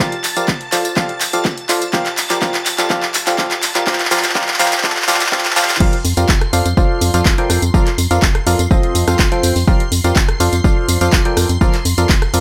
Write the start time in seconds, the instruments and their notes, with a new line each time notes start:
Already playing: string machine A5 A6
0.00 fm electric piano F3 F4 G4 A#4 D5 F5, tambourine
0.12 closed hi-hat
0.24 clap, open hi-hat, tambourine
0.37 fm electric piano F3 F4 G4 A#4 D5 F5, closed hi-hat, tambourine
0.48 kick, clap, tambourine
0.61 closed hi-hat
0.72 fm electric piano F3 F4 A4 C5 D5 F5, clap, open hi-hat, tambourine
0.85 closed hi-hat, tambourine
0.97 fm electric piano F3 F4 G4 A4 D5 F5, kick, clap, tambourine
1.09 closed hi-hat
1.21 clap, open hi-hat, tambourine
1.33 fm electric piano F3 F4 G4 A4 D5 F5, closed hi-hat, tambourine
1.45 kick, clap, tambourine
1.58 closed hi-hat
1.69 fm electric piano F3 F4 A4 C5 D5 F5, clap, open hi-hat, tambourine
1.82 closed hi-hat, tambourine
1.93 fm electric piano F3 F4 G4 A#4 D5 F5, kick, clap, tambourine
2.06 clap, closed hi-hat
2.17 clap, open hi-hat, tambourine
2.30 fm electric piano F3 F4 G4 A#4 D5 F5, clap, closed hi-hat, tambourine
2.42 fm electric piano F3 F4 G4 A#4 D5 F5, kick, clap, tambourine
2.54 clap, closed hi-hat
2.66 clap, open hi-hat, tambourine
2.78 fm electric piano F3 F4 G4 A4 D5 F5, clap, closed hi-hat, tambourine
2.90 fm electric piano F3 F4 G4 A4 D5 F5, kick, clap, tambourine
3.03 clap
3.14 clap, open hi-hat, tambourine
3.27 fm electric piano F3 F4 G4 A4 D5 F5, clap, closed hi-hat, tambourine
3.38 fm electric piano F3 F4 G4 A4 D5 F5, kick, clap, tambourine
3.51 clap, closed hi-hat
3.63 clap, open hi-hat, tambourine
3.75 fm electric piano F3 F4 G4 A#4 D5 F5, clap, closed hi-hat, tambourine
3.87 fm electric piano F3 F4 G4 A#4 D5 F5, kick, clap, tambourine
3.93 clap
3.99 clap, closed hi-hat
4.05 clap
4.11 fm electric piano F3 F4 G4 A#4 D5 F5, clap, open hi-hat, tambourine
4.17 clap
4.24 clap, closed hi-hat, tambourine
4.29 clap
4.35 fm electric piano F3 F4 G4 A#4 D5 F5, kick, clap, tambourine
4.42 clap
4.48 clap, closed hi-hat
4.54 clap
4.59 fm electric piano F3 F4 G4 A#4 D5 F5, clap, open hi-hat, tambourine
4.66 clap
4.72 clap, closed hi-hat, tambourine
4.78 clap
4.84 fm electric piano F3 F4 G4 A4 D5 F5, kick, clap, tambourine
4.90 clap
4.96 clap, closed hi-hat
5.02 clap
5.08 fm electric piano F3 F4 G4 A4 D5 F5, clap, open hi-hat, tambourine
5.14 clap
5.20 clap, closed hi-hat, tambourine
5.26 clap
5.32 fm electric piano F3 F4 G4 A4 D5 F5, kick, clap, tambourine
5.38 clap
5.45 clap, closed hi-hat
5.50 clap
5.56 fm electric piano F3 F4 G4 A4 D5 F5, clap, open hi-hat, tambourine
5.63 clap
5.69 clap, open hi-hat, tambourine
5.75 clap
5.80 fm bass F1, fm electric piano F3 F4 G4 A#4 D5 F5, string machine C6 C7, kick, crash, tambourine
5.93 closed hi-hat
6.05 fm bass F2, open hi-hat, tambourine
6.17 fm bass F2, fm electric piano F3 F4 G4 A#4 D5 F5, closed hi-hat, tambourine
6.29 fm bass F1, kick, clap, tambourine
6.41 cross-stick, closed hi-hat
6.53 fm bass F2, fm electric piano F3 F4 A4 C5 D5 F5, open hi-hat, tambourine
6.66 fm bass F2, closed hi-hat, tambourine
6.77 fm bass F1, fm electric piano F3 F4 A4 C5 D5 F5, kick, tambourine
7.01 fm bass F2, open hi-hat, tambourine
7.14 fm bass F2, fm electric piano F3 F4 A4 C5 D5 F5, closed hi-hat, tambourine
7.26 fm bass F1, kick, clap, tambourine
7.38 fm electric piano F3 F4 A4 A#4 D5 G5, closed hi-hat
7.50 fm bass F2, cross-stick, open hi-hat, tambourine
7.62 fm bass F2, closed hi-hat, tambourine
7.74 fm bass F1, fm electric piano F3 F4 A4 A#4 D5 F5, kick, tambourine
7.87 clap, closed hi-hat
7.98 fm bass F2, open hi-hat, tambourine
8.11 fm bass F2, fm electric piano F3 F4 A4 A#4 D5 F5, closed hi-hat, tambourine
8.22 fm bass F1, kick, clap, tambourine
8.35 cross-stick, closed hi-hat
8.47 fm bass F2, fm electric piano F3 F4 A4 A#4 D5 F5, open hi-hat, tambourine
8.59 fm bass F2, closed hi-hat, tambourine
8.71 fm bass F1, fm electric piano F3 C4 F4 A4 C5 D#5, kick, tambourine
8.83 closed hi-hat
8.95 fm bass F2, open hi-hat, tambourine
9.08 fm bass F2, fm electric piano F3 C4 F4 A4 C5 F5, cross-stick, closed hi-hat, tambourine
9.19 fm bass F1, kick, clap, tambourine
9.32 fm electric piano F3 C4 F4 A4 C5 G5, closed hi-hat
9.43 fm bass F2, open hi-hat, tambourine
9.56 fm bass F2, open hi-hat, tambourine
9.68 fm bass F1, fm electric piano F3 F4 G4 A#4 D5 F5, kick, tambourine
9.80 closed hi-hat
9.92 fm bass F2, open hi-hat, tambourine
10.04 fm bass F2, fm electric piano F3 F4 G4 A#4 D5 F5, closed hi-hat, tambourine
10.16 fm bass F1, kick, clap, tambourine
10.29 cross-stick, closed hi-hat
10.40 fm bass F2, fm electric piano F3 F4 A4 C5 D5 F5, open hi-hat, tambourine
10.53 fm bass F2, closed hi-hat, tambourine
10.64 fm bass F1, fm electric piano F3 F4 A4 C5 D5 F5, kick, tambourine
10.88 fm bass F2, open hi-hat, tambourine
11.01 fm bass F2, fm electric piano F3 F4 A4 C5 D5 F5, closed hi-hat, tambourine
11.13 fm bass F1, kick, clap, tambourine
11.25 fm electric piano F3 F4 A4 A#4 D5 G5, closed hi-hat
11.37 fm bass F2, cross-stick, open hi-hat, tambourine
11.49 fm bass F2, closed hi-hat, tambourine
11.61 fm bass F1, fm electric piano F3 F4 A4 A#4 D5 F5, kick, tambourine
11.74 clap, closed hi-hat
11.85 fm bass F2, open hi-hat, tambourine
11.98 fm bass F2, fm electric piano F3 F4 A4 A#4 D5 F5, closed hi-hat, tambourine
12.09 fm bass F1, kick, clap, tambourine
12.22 cross-stick, closed hi-hat
12.34 fm bass F2, fm electric piano F3 F4 A4 A#4 D5 F5, open hi-hat, tambourine